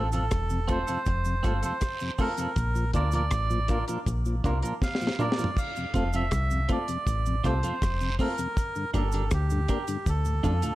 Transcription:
Already playing: fingered electric bass A1
0.12 tonewheel organ F2 C3, clean electric guitar C4 F4 A4, melodica A4, closed hi-hat, cabasa
0.31 fingered electric bass E1, kick, cross-stick, closed hi-hat, cabasa
0.50 tonewheel organ F2 C3, cabasa
0.68 tonewheel organ A3 C4 F4, clean electric guitar C4 F4 A4, kick, closed hi-hat, cabasa
0.72 melodica C5
0.87 tonewheel organ F2 C3, clean electric guitar C4 F4 A4, closed hi-hat, cabasa
1.06 fingered electric bass F1, kick, closed hi-hat, cabasa
1.25 tonewheel organ F2 C3, cabasa
1.43 fingered electric bass G1, tonewheel organ A3 C4 F4, clean electric guitar C4 F4 A4, kick, cross-stick, closed hi-hat, cabasa
1.62 tonewheel organ F2 C3, clean electric guitar C4 F4 A4, melodica C5, closed hi-hat, cabasa
1.81 kick, cross-stick, closed hi-hat, cabasa, long guiro
2.00 tonewheel organ F2 C3, cabasa
2.14 melodica C5
2.18 tonewheel organ A3 C4 F4, clean electric guitar C4 F4 A4, melodica A#4, kick, open hi-hat, cabasa
2.37 tonewheel organ F2 C3, clean electric guitar C4 F4 A4, closed hi-hat, cabasa
2.56 fingered electric bass A#1, kick, closed hi-hat, cabasa
2.75 tonewheel organ A#2 F3, cabasa
2.93 fingered electric bass D2, tonewheel organ A#3 D4 F4, clean electric guitar D4 F4 A#4, melodica D5, kick, closed hi-hat, cabasa
3.12 tonewheel organ A#2 F3, clean electric guitar D4 F4 A#4, melodica D5, closed hi-hat, cabasa
3.31 fingered electric bass A1, kick, cross-stick, closed hi-hat, cabasa
3.50 tonewheel organ A#2 F3, cabasa
3.68 tonewheel organ A#3 D4 F4, clean electric guitar D4 F4 A#4, kick, closed hi-hat, cabasa
3.88 tonewheel organ A#2 F3, clean electric guitar D4 F4 A#4, closed hi-hat, cabasa
4.06 fingered electric bass A#1, kick, closed hi-hat, cabasa
4.25 tonewheel organ A#2 F3, cabasa
4.44 fingered electric bass C2, tonewheel organ A#3 D4 F4, clean electric guitar D4 F4 A#4, kick, closed hi-hat, cabasa
4.62 tonewheel organ A#2 F3, clean electric guitar D4 F4 A#4, closed hi-hat, cabasa
4.82 melodica F5, kick, snare, cabasa, long guiro
4.95 snare
5.01 tonewheel organ A#2 F3, cabasa
5.07 snare
5.19 tonewheel organ A#3 D4 F4, clean electric guitar D4 F4 A#4, melodica D5, mid tom, cabasa
5.32 snare
5.38 tonewheel organ A#2 F3, clean electric guitar D4 F4 A#4, cabasa
5.44 floor tom
5.57 melodica F5, kick, crash, cabasa
5.76 tonewheel organ F2 C3, cabasa
5.94 fingered electric bass F1, tonewheel organ A3 C4 F4, clean electric guitar C4 F4 A4, kick, closed hi-hat, cabasa
6.13 tonewheel organ F2 C3, clean electric guitar C4 F4 A4, melodica E5, closed hi-hat, cabasa
6.31 fingered electric bass C2, kick, cross-stick, closed hi-hat, cabasa
6.51 tonewheel organ F2 C3, cabasa
6.69 tonewheel organ A3 C4 F4, clean electric guitar C4 F4 A4, melodica D5, kick, closed hi-hat, cabasa
6.88 tonewheel organ F2 C3, closed hi-hat, cabasa
7.07 fingered electric bass A1, kick, closed hi-hat, cabasa
7.26 tonewheel organ F2 C3, cabasa
7.44 fingered electric bass C2, tonewheel organ A3 C4 F4, clean electric guitar C4 F4 A4, melodica C5, kick, cross-stick, closed hi-hat, cabasa
7.63 tonewheel organ F2 C3, clean electric guitar C4 F4 A4, closed hi-hat, cabasa
7.82 fingered electric bass F1, kick, cross-stick, closed hi-hat, cabasa, long guiro
8.01 tonewheel organ F2 C3, cabasa
8.19 tonewheel organ A3 C4 F4, clean electric guitar C4 F4 A4, melodica A#4, kick, open hi-hat, cabasa
8.38 tonewheel organ F2 C3, closed hi-hat, cabasa
8.57 kick, closed hi-hat, cabasa
8.75 tonewheel organ G2 D3, cabasa
8.94 fingered electric bass G1, tonewheel organ A#3 D4 G4, clean electric guitar D4 G4 A#4, melodica A4, kick, closed hi-hat, cabasa
9.12 tonewheel organ G2 D3, clean electric guitar D4 G4 A#4, closed hi-hat, cabasa
9.31 fingered electric bass D2, melodica G4, kick, cross-stick, closed hi-hat, cabasa
9.50 tonewheel organ G2 D3, cabasa
9.68 tonewheel organ A#3 D4 G4, clean electric guitar D4 G4 A#4, kick, closed hi-hat, cabasa
9.88 tonewheel organ G2 D3, closed hi-hat, cabasa
10.06 fingered electric bass D2, melodica A4, kick, closed hi-hat, cabasa
10.25 tonewheel organ D2 A2, cabasa
10.43 fingered electric bass F2, tonewheel organ A3 D4 F4, clean electric guitar D4 F4 A4, kick, closed hi-hat, cabasa
10.62 tonewheel organ D2 A2, clean electric guitar D4 F4 A4, closed hi-hat, cabasa

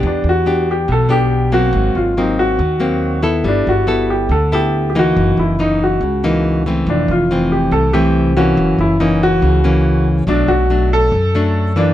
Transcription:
Already playing: nylon-string guitar B3 D4 G4
0.03 upright bass E2, nylon-string guitar E3
0.07 grand piano D4
0.24 upright bass E2
0.29 grand piano F#4
0.46 nylon-string guitar B3 D4 G4
0.71 grand piano G4
0.88 upright bass B1, nylon-string guitar B2, grand piano A4
1.09 nylon-string guitar B3 D4 G4, grand piano G4
1.52 nylon-string guitar F#3 A#3 C4, grand piano F#4
1.73 upright bass G#1, nylon-string guitar G#2
1.95 upright bass G#1, grand piano F4
2.17 nylon-string guitar F#3 A#3 C4, grand piano D#4
2.39 grand piano F#4
2.59 upright bass D#2, nylon-string guitar D#3
2.80 nylon-string guitar F#3 A#3 C4
3.22 nylon-string guitar B3 E4 A4
3.44 upright bass G1, nylon-string guitar G3
3.48 grand piano D4
3.67 upright bass G1, grand piano F#4
3.87 nylon-string guitar B3 E4 A4
4.10 grand piano G4
4.29 upright bass D2, nylon-string guitar D3, grand piano A4
4.52 nylon-string guitar B3 E4 A4, grand piano G4
4.90 grand piano G4
4.95 nylon-string guitar E3 A#3 D#4, grand piano F#4
5.17 upright bass F#1, nylon-string guitar F#2
5.37 upright bass F#1, grand piano E4
5.59 nylon-string guitar E3 A#3 D#4, grand piano D#4
5.83 grand piano F#4
6.01 upright bass C#2, nylon-string guitar C#3
6.24 nylon-string guitar E3 A#3 D#4
6.66 nylon-string guitar E3 A3 C4
6.87 upright bass F1, nylon-string guitar F2, grand piano D4
7.08 upright bass F1, grand piano F4
7.31 nylon-string guitar E3 A3 C4
7.52 grand piano G4
7.72 upright bass C2, nylon-string guitar C3, grand piano A4
7.93 nylon-string guitar E3 A3 C4, grand piano G4
8.37 nylon-string guitar E3 A#3 C#4, grand piano F#4
8.57 upright bass F#1, nylon-string guitar F#2
8.79 upright bass F#1, grand piano E4
9.00 nylon-string guitar E3 A#3 C#4, grand piano D#4
9.23 grand piano F#4
9.42 upright bass C#2, nylon-string guitar C#3
9.64 nylon-string guitar E3 A#3 C#4
10.27 upright bass B1, nylon-string guitar B2 F#3 A3 D4, grand piano D4
10.48 upright bass B1, grand piano F#4
10.70 nylon-string guitar F#3 A3 D4
10.93 grand piano A4
11.12 upright bass F#2, nylon-string guitar F#2
11.35 nylon-string guitar F#3 A3 D4
11.76 nylon-string guitar E3 A#3 D4, grand piano D4

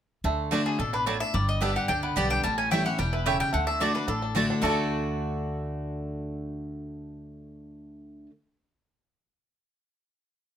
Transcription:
0.24 upright bass D2, steel-string acoustic guitar D3, five-string banjo A3
0.51 steel-string acoustic guitar D3 A3 D4 F#4, mandolin A3 F#4 D5 A5, five-string banjo D4
0.66 five-string banjo D4, mandolin G#4
0.79 upright bass A1, steel-string acoustic guitar B2, five-string banjo D4, mandolin A4
0.93 five-string banjo D4, mandolin B4
1.06 steel-string acoustic guitar A2, mandolin A3 F#4 C#5 D5 A5, five-string banjo D4
1.20 five-string banjo D4, mandolin E5
1.34 upright bass G1, steel-string acoustic guitar G2, five-string banjo G3, mandolin D5
1.49 mandolin D#5
1.61 steel-string acoustic guitar G3 B3 D4 G4, mandolin B3 G4 D5 E5 G5, five-string banjo D4
1.76 five-string banjo G4, mandolin F#5
1.88 upright bass C#2, steel-string acoustic guitar D3, five-string banjo D4, mandolin G5
2.03 five-string banjo B3, mandolin B4
2.16 upright bass B1, steel-string acoustic guitar G3 B3 D4 G4, mandolin B3 G4 D5 G5, five-string banjo G4
2.30 five-string banjo D4, mandolin G5
2.44 upright bass A1, steel-string acoustic guitar A2, five-string banjo G3, mandolin A5
2.58 five-string banjo C#4, mandolin G#5
2.71 steel-string acoustic guitar E3 G3 C#4 E4, mandolin A3 E4 C#5 G5, five-string banjo E4
2.85 steel-string acoustic guitar C#4 E4, five-string banjo G4, mandolin F#5
2.99 upright bass E1, steel-string acoustic guitar B2, five-string banjo G3, mandolin G5
3.13 five-string banjo E4, mandolin B4
3.26 steel-string acoustic guitar C#3, mandolin A3 E4 C#5 E5 G5, five-string banjo G4
3.40 five-string banjo G3, mandolin G5
3.53 upright bass D2, steel-string acoustic guitar D3, five-string banjo A3, mandolin F#5
3.67 five-string banjo D4, mandolin E5
3.80 steel-string acoustic guitar D3 A3 D4 F#4, mandolin A3 F#4 D5 A5, five-string banjo D4
3.94 five-string banjo D4, steel-string acoustic guitar D4 F#4, mandolin B4
4.08 upright bass A1, steel-string acoustic guitar A2, five-string banjo D4, mandolin A4
4.22 five-string banjo D4
4.35 steel-string acoustic guitar D3 A3 D4 F#4, mandolin A3 F#4 D5 A5, five-string banjo D4
4.50 five-string banjo D4
4.62 upright bass D2, steel-string acoustic guitar D3 A3 D4 F#4, mandolin A3 F#4 A4 D5 A5, five-string banjo A3 D4
4.67 five-string banjo F#4 A4

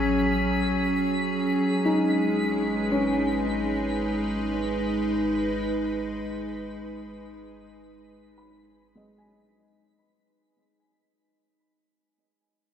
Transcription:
Already playing: analog synth bass A1, ambient pad F#3 C#4 G#4, synth texture B6
1.65 analog synth bass G#1, ambient pad G#3
1.85 felt piano D#4
2.48 ambient pad B4
2.53 ambient pad D#4
2.91 felt piano C#4
8.38 felt piano B5
8.95 felt piano G#3 D#5
9.18 felt piano G#5

